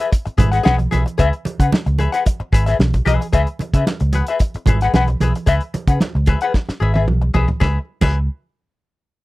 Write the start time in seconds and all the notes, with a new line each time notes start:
0.00 G#4 B4, closed hi-hat
0.11 muted hollow-body jazz guitar stroke, kick, closed hi-hat
0.25 muted hollow-body jazz guitar stroke, muted fingered electric bass stroke, closed hi-hat
0.38 G#1 G#4 B4 E5, kick, closed hi-hat, low conga
0.52 G#4 B4 F#5, snare, closed hi-hat
0.63 B1 G#4 B4 F#5, snare, high conga
0.78 muted hollow-body jazz guitar stroke, closed hi-hat, high conga
0.91 B1 G#4 B4 E5, snare, closed hi-hat, high conga
1.06 muted hollow-body jazz guitar stroke, closed hi-hat
1.18 C#2 G#4 B4 E5, kick, closed hi-hat
1.33 closed hi-hat
1.45 muted hollow-body jazz guitar stroke, muted fingered electric bass stroke, closed hi-hat, muted conga
1.60 C#3 G#4 B4 F#5, kick, closed hi-hat
1.72 muted fingered electric bass stroke, muted hollow-body jazz guitar stroke, snare, high conga
1.86 C#2, muted hollow-body jazz guitar stroke, closed hi-hat
1.99 G#4 B4 E5, closed hi-hat, muted conga
2.12 G#4 B4 F#5, closed hi-hat
2.25 muted hollow-body jazz guitar stroke, kick, closed hi-hat, muted conga
2.40 muted fingered electric bass stroke, muted hollow-body jazz guitar stroke
2.52 G#1 G#4 B4 E5, kick, closed hi-hat
2.66 G#4 B4 E5, snare, closed hi-hat
2.79 B1, snare, high conga
2.94 muted hollow-body jazz guitar stroke, kick, closed hi-hat, high conga
3.05 B1 G#4 B4 E5, snare, closed hi-hat, high conga
3.21 muted hollow-body jazz guitar stroke, closed hi-hat
3.33 C#2 G#4 B4 E5, kick, closed hi-hat
3.47 closed hi-hat
3.59 muted fingered electric bass stroke, muted hollow-body jazz guitar stroke, closed hi-hat, muted conga
3.74 C#3 G#4 B4 E5, kick, closed hi-hat
3.86 muted fingered electric bass stroke, muted hollow-body jazz guitar stroke, snare, high conga
4.00 C#2, muted hollow-body jazz guitar stroke, closed hi-hat
4.13 G#4 B4 F#5, snare, closed hi-hat, muted conga
4.27 G#4 B4 E5, closed hi-hat
4.39 muted hollow-body jazz guitar stroke, kick, closed hi-hat, muted conga
4.54 muted fingered electric bass stroke, muted hollow-body jazz guitar stroke, closed hi-hat
4.66 G#1 G#4 B4 E5, kick, closed hi-hat, low conga
4.81 G#4 B4 F#5, snare, closed hi-hat
4.94 B1 G#4 B4 F#5, snare, high conga
5.07 muted hollow-body jazz guitar stroke, closed hi-hat, high conga
5.20 B1 G#4 B4 E5, snare, closed hi-hat, high conga
5.35 muted hollow-body jazz guitar stroke, closed hi-hat
5.46 C#2 G#4 B4 E5, kick, closed hi-hat
5.61 closed hi-hat
5.74 muted hollow-body jazz guitar stroke, muted fingered electric bass stroke, closed hi-hat, muted conga
5.87 C#3 G#4 B4 F#5, kick, closed hi-hat
6.00 muted hollow-body jazz guitar stroke, muted fingered electric bass stroke, snare, high conga
6.15 C#2, muted hollow-body jazz guitar stroke
6.26 G#4 B4 E5, kick, snare, closed hi-hat, muted conga
6.41 G#4 B4 F#5, closed hi-hat
6.54 muted hollow-body jazz guitar stroke, kick, snare, muted conga
6.69 muted fingered electric bass stroke, muted hollow-body jazz guitar stroke, snare
6.80 G#1 G#4 B4 E5
6.94 G#4 B4 E5, high tom
7.08 B1, mid tom, high conga
7.21 muted hollow-body jazz guitar stroke, high conga
7.34 B1 G#4 B4 E5, floor tom, high conga
7.48 muted hollow-body jazz guitar stroke, floor tom
7.60 C#2 G#4 B4 E5, kick, snare, muted conga
8.01 C#2 G#4 B4 E5, kick, crash, muted conga